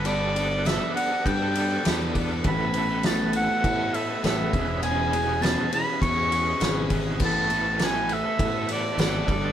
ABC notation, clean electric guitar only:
X:1
M:4/4
L:1/16
Q:1/4=101
K:A
V:1 name="Clean electric guitar"
[=G,B,DA]2 [G,B,DA] [B,DA] [G,B,DA] [B,DA]2 [B,DA]2 [B,DA] [G,B,DA] [B,DA] [G,B,DA]2 [G,B,DA] [B,DA] | [A,,E,A,B,A]2 [E,A,B,A] [A,B,A] [A,,E,A,B,A] [A,B,A]2 [A,B,A]2 [A,B,A] [E,A,B,A] [A,B,A] [A,,E,A,B,A]2 [E,,B,,E,B,CG] [E,B,CG] | [E,,B,,E,B,CG]2 [E,B,CG] [E,B,CG] [E,,B,,E,B,CG] [E,B,CG]2 [E,B,CG]2 [E,B,CG] [E,B,CG] [E,B,CG] [E,,B,,E,B,CG]2 [E,B,CG] [E,B,CG] | [A,,E,A,B,A]2 [E,A,B,A] [A,B,A] [A,,E,A,B,A] [A,B,A]2 [A,B,A]2 [A,B,A] [E,A,B,A] [A,B,A] [A,,E,A,B,A]2 [=G,B,DA] [B,DA] |]